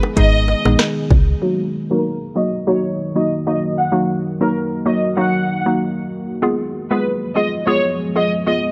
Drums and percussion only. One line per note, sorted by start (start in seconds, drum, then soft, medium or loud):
0.03 high bongo medium
0.17 kick medium
0.17 closed hi-hat medium
0.48 high bongo medium
0.66 high bongo medium
0.79 cross-stick loud
0.79 snare loud
0.79 closed hi-hat medium
1.11 kick medium
1.11 low bongo medium